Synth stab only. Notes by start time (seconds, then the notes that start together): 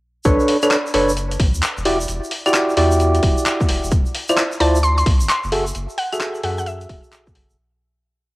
0.25 D4 A4 B4 C#5
0.63 D4 A4 B4 C#5
0.94 D4 A4 B4 C#5
1.85 E4 F#4 G4 D5
2.46 E4 F#4 G4 D5
2.77 E4 F#4 G4 D5
4.29 E4 F4 C5 D5
4.60 E4 F4 C5 D5
5.52 F#4 G#4 A4 E5
6.12 F#4 G#4 A4 E5
6.43 F#4 G#4 A4 E5